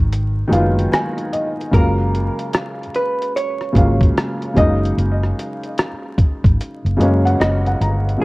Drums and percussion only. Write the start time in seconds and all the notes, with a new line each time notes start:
0.13 closed hi-hat
0.53 closed hi-hat
0.79 closed hi-hat
0.93 cross-stick, closed hi-hat
1.18 closed hi-hat
1.33 closed hi-hat
1.61 closed hi-hat
1.73 kick, closed hi-hat
2.15 closed hi-hat
2.39 closed hi-hat
2.53 cross-stick, closed hi-hat
2.83 closed hi-hat
2.94 closed hi-hat
3.22 closed hi-hat
3.37 closed hi-hat
3.61 cross-stick
3.75 kick, closed hi-hat
4.01 kick, closed hi-hat
4.17 cross-stick, closed hi-hat
4.42 closed hi-hat
4.56 kick, closed hi-hat
4.85 closed hi-hat
4.98 closed hi-hat
5.23 cross-stick
5.39 closed hi-hat
5.63 closed hi-hat
5.78 cross-stick, closed hi-hat
6.18 kick, closed hi-hat
6.44 kick, closed hi-hat
6.61 closed hi-hat
6.86 closed hi-hat
7.01 closed hi-hat
7.27 closed hi-hat
7.41 cross-stick, closed hi-hat
7.66 closed hi-hat
7.81 closed hi-hat
8.09 closed hi-hat